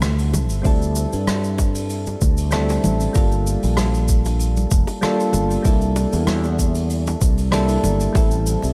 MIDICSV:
0, 0, Header, 1, 4, 480
1, 0, Start_track
1, 0, Tempo, 625000
1, 500, Time_signature, 4, 2, 24, 8
1, 6705, End_track
2, 0, Start_track
2, 0, Title_t, "Synth keys"
2, 0, Program_c, 0, 88
2, 0, Control_c, 0, 64, 127
2, 0, Note_on_c, 0, 55, 71
2, 0, Note_on_c, 0, 57, 67
2, 0, Note_on_c, 0, 60, 66
2, 0, Note_on_c, 0, 64, 65
2, 0, Note_on_c, 0, 69, 83
2, 476, Note_off_c, 0, 55, 0
2, 476, Note_on_c, 0, 55, 72
2, 486, Note_off_c, 0, 60, 0
2, 486, Note_on_c, 0, 60, 66
2, 492, Note_on_c, 0, 62, 70
2, 501, Note_off_c, 0, 64, 0
2, 501, Note_on_c, 0, 64, 66
2, 509, Note_off_c, 0, 57, 0
2, 509, Control_c, 0, 64, 0
2, 511, Note_off_c, 0, 69, 0
2, 511, Note_on_c, 0, 69, 82
2, 639, Control_c, 0, 64, 127
2, 1901, Note_off_c, 0, 55, 0
2, 1906, Note_off_c, 0, 60, 0
2, 1909, Note_off_c, 0, 62, 0
2, 1914, Note_off_c, 0, 64, 0
2, 1919, Note_off_c, 0, 69, 0
2, 1926, Note_on_c, 0, 55, 83
2, 1932, Note_on_c, 0, 60, 80
2, 1937, Note_on_c, 0, 62, 73
2, 1940, Note_on_c, 0, 64, 77
2, 1945, Note_on_c, 0, 69, 91
2, 2386, Note_off_c, 0, 55, 0
2, 2389, Note_off_c, 0, 60, 0
2, 2392, Note_off_c, 0, 62, 0
2, 2393, Note_off_c, 0, 64, 0
2, 2396, Note_off_c, 0, 69, 0
2, 2404, Note_on_c, 0, 55, 80
2, 2412, Note_on_c, 0, 58, 69
2, 2424, Note_on_c, 0, 62, 64
2, 2430, Control_c, 0, 64, 0
2, 2433, Note_on_c, 0, 65, 67
2, 2441, Note_on_c, 0, 69, 78
2, 2555, Control_c, 0, 64, 127
2, 3825, Note_off_c, 0, 55, 0
2, 3829, Note_off_c, 0, 58, 0
2, 3835, Note_off_c, 0, 62, 0
2, 3840, Note_off_c, 0, 65, 0
2, 3844, Note_off_c, 0, 69, 0
2, 3850, Note_on_c, 0, 55, 88
2, 3855, Note_on_c, 0, 58, 81
2, 3858, Note_on_c, 0, 62, 82
2, 3863, Note_on_c, 0, 65, 81
2, 3866, Note_on_c, 0, 69, 101
2, 4308, Note_off_c, 0, 55, 0
2, 4311, Note_off_c, 0, 58, 0
2, 4312, Note_off_c, 0, 62, 0
2, 4315, Note_off_c, 0, 65, 0
2, 4316, Note_off_c, 0, 69, 0
2, 4320, Note_on_c, 0, 55, 77
2, 4326, Note_on_c, 0, 58, 67
2, 4335, Note_on_c, 0, 62, 68
2, 4346, Note_on_c, 0, 64, 71
2, 4351, Control_c, 0, 64, 0
2, 4353, Note_on_c, 0, 69, 84
2, 4464, Control_c, 0, 64, 127
2, 5743, Note_off_c, 0, 55, 0
2, 5746, Note_off_c, 0, 58, 0
2, 5751, Note_off_c, 0, 62, 0
2, 5757, Note_off_c, 0, 64, 0
2, 5760, Note_off_c, 0, 69, 0
2, 5771, Note_on_c, 0, 55, 84
2, 5777, Note_on_c, 0, 58, 77
2, 5780, Note_on_c, 0, 62, 82
2, 5784, Note_on_c, 0, 64, 82
2, 5788, Note_on_c, 0, 69, 96
2, 6229, Note_off_c, 0, 55, 0
2, 6232, Note_off_c, 0, 58, 0
2, 6233, Note_off_c, 0, 62, 0
2, 6235, Note_off_c, 0, 64, 0
2, 6237, Note_off_c, 0, 69, 0
2, 6241, Note_on_c, 0, 55, 77
2, 6250, Note_on_c, 0, 57, 67
2, 6258, Note_on_c, 0, 60, 67
2, 6267, Note_on_c, 0, 64, 72
2, 6269, Control_c, 0, 64, 0
2, 6278, Note_on_c, 0, 69, 80
2, 6395, Control_c, 0, 64, 127
2, 6705, Note_off_c, 0, 55, 0
2, 6705, Note_off_c, 0, 57, 0
2, 6705, Note_off_c, 0, 60, 0
2, 6705, Note_off_c, 0, 64, 0
2, 6705, Note_off_c, 0, 69, 0
2, 6705, End_track
3, 0, Start_track
3, 0, Title_t, "Fretless electric bass"
3, 0, Program_c, 1, 35
3, 21, Note_on_c, 1, 38, 83
3, 387, Note_off_c, 1, 38, 0
3, 387, Note_on_c, 1, 31, 71
3, 464, Note_off_c, 1, 31, 0
3, 500, Note_on_c, 1, 38, 89
3, 803, Note_off_c, 1, 38, 0
3, 868, Note_on_c, 1, 43, 80
3, 1643, Note_off_c, 1, 43, 0
3, 1702, Note_on_c, 1, 38, 80
3, 2125, Note_off_c, 1, 38, 0
3, 2181, Note_on_c, 1, 33, 79
3, 2350, Note_off_c, 1, 33, 0
3, 2423, Note_on_c, 1, 31, 85
3, 2725, Note_off_c, 1, 31, 0
3, 2791, Note_on_c, 1, 34, 84
3, 3565, Note_off_c, 1, 34, 0
3, 3621, Note_on_c, 1, 29, 83
3, 3708, Note_off_c, 1, 29, 0
3, 4099, Note_on_c, 1, 31, 81
3, 4269, Note_off_c, 1, 31, 0
3, 4340, Note_on_c, 1, 36, 90
3, 4643, Note_off_c, 1, 36, 0
3, 4708, Note_on_c, 1, 40, 83
3, 5483, Note_off_c, 1, 40, 0
3, 5541, Note_on_c, 1, 36, 79
3, 5964, Note_off_c, 1, 36, 0
3, 6021, Note_on_c, 1, 31, 84
3, 6190, Note_off_c, 1, 31, 0
3, 6261, Note_on_c, 1, 33, 92
3, 6564, Note_off_c, 1, 33, 0
3, 6630, Note_on_c, 1, 36, 85
3, 6705, Note_off_c, 1, 36, 0
3, 6705, End_track
4, 0, Start_track
4, 0, Title_t, "Drums"
4, 14, Note_on_c, 9, 37, 95
4, 15, Note_on_c, 9, 82, 56
4, 16, Note_on_c, 9, 64, 83
4, 25, Note_on_c, 9, 46, 64
4, 91, Note_off_c, 9, 37, 0
4, 92, Note_off_c, 9, 82, 0
4, 93, Note_off_c, 9, 64, 0
4, 101, Note_off_c, 9, 46, 0
4, 142, Note_on_c, 9, 46, 63
4, 143, Note_on_c, 9, 82, 43
4, 219, Note_off_c, 9, 46, 0
4, 220, Note_off_c, 9, 82, 0
4, 257, Note_on_c, 9, 60, 73
4, 260, Note_on_c, 9, 82, 82
4, 261, Note_on_c, 9, 63, 85
4, 261, Note_on_c, 9, 64, 82
4, 334, Note_off_c, 9, 60, 0
4, 337, Note_off_c, 9, 82, 0
4, 338, Note_off_c, 9, 63, 0
4, 338, Note_off_c, 9, 64, 0
4, 378, Note_on_c, 9, 82, 49
4, 380, Note_on_c, 9, 46, 55
4, 455, Note_off_c, 9, 82, 0
4, 456, Note_off_c, 9, 46, 0
4, 492, Note_on_c, 9, 46, 63
4, 497, Note_on_c, 9, 82, 57
4, 501, Note_on_c, 9, 36, 117
4, 569, Note_off_c, 9, 46, 0
4, 573, Note_off_c, 9, 82, 0
4, 577, Note_off_c, 9, 36, 0
4, 630, Note_on_c, 9, 82, 36
4, 707, Note_off_c, 9, 82, 0
4, 733, Note_on_c, 9, 82, 83
4, 739, Note_on_c, 9, 46, 40
4, 740, Note_on_c, 9, 60, 45
4, 809, Note_off_c, 9, 82, 0
4, 816, Note_off_c, 9, 46, 0
4, 817, Note_off_c, 9, 60, 0
4, 865, Note_on_c, 9, 82, 47
4, 868, Note_on_c, 9, 46, 50
4, 942, Note_off_c, 9, 82, 0
4, 945, Note_off_c, 9, 46, 0
4, 974, Note_on_c, 9, 46, 62
4, 978, Note_on_c, 9, 37, 89
4, 980, Note_on_c, 9, 63, 83
4, 980, Note_on_c, 9, 82, 59
4, 1051, Note_off_c, 9, 46, 0
4, 1055, Note_off_c, 9, 37, 0
4, 1057, Note_off_c, 9, 63, 0
4, 1057, Note_off_c, 9, 82, 0
4, 1105, Note_on_c, 9, 82, 35
4, 1182, Note_off_c, 9, 82, 0
4, 1216, Note_on_c, 9, 60, 77
4, 1218, Note_on_c, 9, 82, 79
4, 1222, Note_on_c, 9, 36, 55
4, 1293, Note_off_c, 9, 60, 0
4, 1294, Note_off_c, 9, 82, 0
4, 1299, Note_off_c, 9, 36, 0
4, 1343, Note_on_c, 9, 46, 52
4, 1345, Note_on_c, 9, 82, 47
4, 1420, Note_off_c, 9, 46, 0
4, 1421, Note_off_c, 9, 82, 0
4, 1454, Note_on_c, 9, 46, 62
4, 1456, Note_on_c, 9, 82, 52
4, 1531, Note_off_c, 9, 46, 0
4, 1533, Note_off_c, 9, 82, 0
4, 1585, Note_on_c, 9, 82, 36
4, 1591, Note_on_c, 9, 63, 57
4, 1594, Note_on_c, 9, 60, 48
4, 1662, Note_off_c, 9, 82, 0
4, 1668, Note_off_c, 9, 63, 0
4, 1670, Note_off_c, 9, 60, 0
4, 1699, Note_on_c, 9, 82, 85
4, 1703, Note_on_c, 9, 36, 93
4, 1775, Note_off_c, 9, 82, 0
4, 1780, Note_off_c, 9, 36, 0
4, 1822, Note_on_c, 9, 82, 44
4, 1827, Note_on_c, 9, 46, 51
4, 1899, Note_off_c, 9, 82, 0
4, 1904, Note_off_c, 9, 46, 0
4, 1930, Note_on_c, 9, 82, 50
4, 1934, Note_on_c, 9, 46, 59
4, 1938, Note_on_c, 9, 37, 92
4, 1943, Note_on_c, 9, 64, 78
4, 2007, Note_off_c, 9, 82, 0
4, 2011, Note_off_c, 9, 46, 0
4, 2015, Note_off_c, 9, 37, 0
4, 2020, Note_off_c, 9, 64, 0
4, 2063, Note_on_c, 9, 46, 57
4, 2068, Note_on_c, 9, 82, 41
4, 2075, Note_on_c, 9, 60, 73
4, 2140, Note_off_c, 9, 46, 0
4, 2145, Note_off_c, 9, 82, 0
4, 2152, Note_off_c, 9, 60, 0
4, 2179, Note_on_c, 9, 64, 84
4, 2181, Note_on_c, 9, 63, 92
4, 2181, Note_on_c, 9, 82, 76
4, 2256, Note_off_c, 9, 64, 0
4, 2258, Note_off_c, 9, 63, 0
4, 2258, Note_off_c, 9, 82, 0
4, 2305, Note_on_c, 9, 82, 46
4, 2309, Note_on_c, 9, 46, 52
4, 2382, Note_off_c, 9, 82, 0
4, 2386, Note_off_c, 9, 46, 0
4, 2415, Note_on_c, 9, 82, 58
4, 2416, Note_on_c, 9, 46, 64
4, 2422, Note_on_c, 9, 60, 46
4, 2423, Note_on_c, 9, 36, 115
4, 2492, Note_off_c, 9, 82, 0
4, 2493, Note_off_c, 9, 46, 0
4, 2499, Note_off_c, 9, 60, 0
4, 2500, Note_off_c, 9, 36, 0
4, 2548, Note_on_c, 9, 82, 35
4, 2625, Note_off_c, 9, 82, 0
4, 2656, Note_on_c, 9, 46, 40
4, 2662, Note_on_c, 9, 82, 71
4, 2733, Note_off_c, 9, 46, 0
4, 2739, Note_off_c, 9, 82, 0
4, 2784, Note_on_c, 9, 46, 58
4, 2789, Note_on_c, 9, 82, 46
4, 2861, Note_off_c, 9, 46, 0
4, 2865, Note_off_c, 9, 82, 0
4, 2892, Note_on_c, 9, 46, 60
4, 2894, Note_on_c, 9, 37, 83
4, 2900, Note_on_c, 9, 60, 66
4, 2901, Note_on_c, 9, 82, 54
4, 2903, Note_on_c, 9, 63, 89
4, 2969, Note_off_c, 9, 46, 0
4, 2971, Note_off_c, 9, 37, 0
4, 2976, Note_off_c, 9, 60, 0
4, 2978, Note_off_c, 9, 82, 0
4, 2979, Note_off_c, 9, 63, 0
4, 3028, Note_on_c, 9, 82, 34
4, 3105, Note_off_c, 9, 82, 0
4, 3135, Note_on_c, 9, 82, 78
4, 3142, Note_on_c, 9, 36, 54
4, 3212, Note_off_c, 9, 82, 0
4, 3219, Note_off_c, 9, 36, 0
4, 3264, Note_on_c, 9, 82, 49
4, 3265, Note_on_c, 9, 46, 57
4, 3271, Note_on_c, 9, 60, 53
4, 3341, Note_off_c, 9, 82, 0
4, 3342, Note_off_c, 9, 46, 0
4, 3348, Note_off_c, 9, 60, 0
4, 3371, Note_on_c, 9, 46, 56
4, 3382, Note_on_c, 9, 82, 58
4, 3448, Note_off_c, 9, 46, 0
4, 3458, Note_off_c, 9, 82, 0
4, 3506, Note_on_c, 9, 82, 37
4, 3513, Note_on_c, 9, 63, 61
4, 3583, Note_off_c, 9, 82, 0
4, 3590, Note_off_c, 9, 63, 0
4, 3615, Note_on_c, 9, 82, 83
4, 3621, Note_on_c, 9, 36, 92
4, 3692, Note_off_c, 9, 82, 0
4, 3698, Note_off_c, 9, 36, 0
4, 3743, Note_on_c, 9, 46, 58
4, 3743, Note_on_c, 9, 60, 62
4, 3745, Note_on_c, 9, 82, 46
4, 3820, Note_off_c, 9, 46, 0
4, 3820, Note_off_c, 9, 60, 0
4, 3822, Note_off_c, 9, 82, 0
4, 3858, Note_on_c, 9, 82, 52
4, 3861, Note_on_c, 9, 46, 58
4, 3863, Note_on_c, 9, 37, 88
4, 3863, Note_on_c, 9, 64, 69
4, 3935, Note_off_c, 9, 82, 0
4, 3938, Note_off_c, 9, 46, 0
4, 3940, Note_off_c, 9, 37, 0
4, 3940, Note_off_c, 9, 64, 0
4, 3990, Note_on_c, 9, 46, 59
4, 3994, Note_on_c, 9, 82, 37
4, 4067, Note_off_c, 9, 46, 0
4, 4071, Note_off_c, 9, 82, 0
4, 4093, Note_on_c, 9, 64, 82
4, 4097, Note_on_c, 9, 63, 78
4, 4099, Note_on_c, 9, 82, 81
4, 4100, Note_on_c, 9, 60, 53
4, 4170, Note_off_c, 9, 64, 0
4, 4174, Note_off_c, 9, 63, 0
4, 4176, Note_off_c, 9, 82, 0
4, 4177, Note_off_c, 9, 60, 0
4, 4226, Note_on_c, 9, 46, 57
4, 4228, Note_on_c, 9, 82, 48
4, 4302, Note_off_c, 9, 46, 0
4, 4305, Note_off_c, 9, 82, 0
4, 4334, Note_on_c, 9, 46, 62
4, 4337, Note_on_c, 9, 82, 54
4, 4340, Note_on_c, 9, 36, 114
4, 4411, Note_off_c, 9, 46, 0
4, 4414, Note_off_c, 9, 82, 0
4, 4417, Note_off_c, 9, 36, 0
4, 4464, Note_on_c, 9, 82, 33
4, 4541, Note_off_c, 9, 82, 0
4, 4577, Note_on_c, 9, 46, 52
4, 4577, Note_on_c, 9, 82, 67
4, 4578, Note_on_c, 9, 60, 83
4, 4654, Note_off_c, 9, 46, 0
4, 4654, Note_off_c, 9, 60, 0
4, 4654, Note_off_c, 9, 82, 0
4, 4705, Note_on_c, 9, 82, 43
4, 4706, Note_on_c, 9, 46, 53
4, 4782, Note_off_c, 9, 46, 0
4, 4782, Note_off_c, 9, 82, 0
4, 4816, Note_on_c, 9, 37, 88
4, 4816, Note_on_c, 9, 46, 64
4, 4817, Note_on_c, 9, 63, 84
4, 4818, Note_on_c, 9, 82, 54
4, 4892, Note_off_c, 9, 37, 0
4, 4893, Note_off_c, 9, 46, 0
4, 4894, Note_off_c, 9, 63, 0
4, 4895, Note_off_c, 9, 82, 0
4, 4944, Note_on_c, 9, 82, 34
4, 4955, Note_on_c, 9, 60, 49
4, 5021, Note_off_c, 9, 82, 0
4, 5032, Note_off_c, 9, 60, 0
4, 5061, Note_on_c, 9, 36, 53
4, 5062, Note_on_c, 9, 82, 75
4, 5138, Note_off_c, 9, 36, 0
4, 5138, Note_off_c, 9, 82, 0
4, 5182, Note_on_c, 9, 46, 52
4, 5182, Note_on_c, 9, 82, 44
4, 5259, Note_off_c, 9, 46, 0
4, 5259, Note_off_c, 9, 82, 0
4, 5297, Note_on_c, 9, 46, 65
4, 5299, Note_on_c, 9, 82, 54
4, 5373, Note_off_c, 9, 46, 0
4, 5376, Note_off_c, 9, 82, 0
4, 5429, Note_on_c, 9, 82, 39
4, 5433, Note_on_c, 9, 63, 59
4, 5434, Note_on_c, 9, 60, 81
4, 5505, Note_off_c, 9, 82, 0
4, 5510, Note_off_c, 9, 63, 0
4, 5511, Note_off_c, 9, 60, 0
4, 5539, Note_on_c, 9, 82, 86
4, 5541, Note_on_c, 9, 36, 93
4, 5616, Note_off_c, 9, 82, 0
4, 5618, Note_off_c, 9, 36, 0
4, 5663, Note_on_c, 9, 46, 54
4, 5669, Note_on_c, 9, 82, 46
4, 5740, Note_off_c, 9, 46, 0
4, 5745, Note_off_c, 9, 82, 0
4, 5774, Note_on_c, 9, 37, 95
4, 5779, Note_on_c, 9, 82, 58
4, 5780, Note_on_c, 9, 64, 82
4, 5781, Note_on_c, 9, 60, 52
4, 5782, Note_on_c, 9, 46, 68
4, 5851, Note_off_c, 9, 37, 0
4, 5855, Note_off_c, 9, 82, 0
4, 5856, Note_off_c, 9, 64, 0
4, 5858, Note_off_c, 9, 46, 0
4, 5858, Note_off_c, 9, 60, 0
4, 5901, Note_on_c, 9, 82, 42
4, 5903, Note_on_c, 9, 46, 67
4, 5977, Note_off_c, 9, 82, 0
4, 5980, Note_off_c, 9, 46, 0
4, 6018, Note_on_c, 9, 63, 75
4, 6018, Note_on_c, 9, 64, 83
4, 6021, Note_on_c, 9, 82, 84
4, 6094, Note_off_c, 9, 63, 0
4, 6095, Note_off_c, 9, 64, 0
4, 6098, Note_off_c, 9, 82, 0
4, 6146, Note_on_c, 9, 82, 52
4, 6149, Note_on_c, 9, 46, 57
4, 6222, Note_off_c, 9, 82, 0
4, 6226, Note_off_c, 9, 46, 0
4, 6255, Note_on_c, 9, 46, 64
4, 6259, Note_on_c, 9, 60, 86
4, 6262, Note_on_c, 9, 36, 105
4, 6265, Note_on_c, 9, 82, 57
4, 6331, Note_off_c, 9, 46, 0
4, 6336, Note_off_c, 9, 60, 0
4, 6338, Note_off_c, 9, 36, 0
4, 6342, Note_off_c, 9, 82, 0
4, 6382, Note_on_c, 9, 82, 42
4, 6459, Note_off_c, 9, 82, 0
4, 6495, Note_on_c, 9, 46, 43
4, 6501, Note_on_c, 9, 82, 75
4, 6572, Note_off_c, 9, 46, 0
4, 6578, Note_off_c, 9, 82, 0
4, 6622, Note_on_c, 9, 60, 54
4, 6626, Note_on_c, 9, 46, 53
4, 6631, Note_on_c, 9, 82, 44
4, 6699, Note_off_c, 9, 60, 0
4, 6703, Note_off_c, 9, 46, 0
4, 6705, Note_off_c, 9, 82, 0
4, 6705, End_track
0, 0, End_of_file